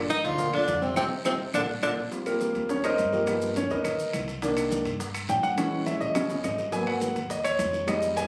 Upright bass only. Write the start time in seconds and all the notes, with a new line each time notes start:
Already playing: G1
0.24 D2
0.68 F2
0.96 F2
1.25 F2
1.54 A#1
1.83 A#1
2.55 D#2
2.98 G2
3.70 D#2
4.13 C2
4.85 G2
5.29 A#1
6.01 D#2
6.44 G#1
7.15 D#2
7.59 F2